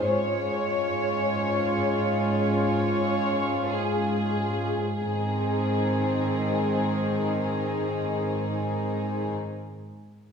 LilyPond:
<<
  \new Staff \with { instrumentName = "Violin section" } { \time 4/4 \key aes \major \tempo 4 = 45 des''2 des''4 aes'4 | aes'1 | }
  \new Staff \with { instrumentName = "Violin section" } { \time 4/4 \key aes \major aes'1 | <ees' aes'>1 | }
  \new Staff \with { instrumentName = "Viola section" } { \time 4/4 \key aes \major <des' f'>1 | <ees c'>1 | }
  \new Staff \with { instrumentName = "Cello section" } { \clef bass \time 4/4 \key aes \major aes,1 | aes,1 | }
>>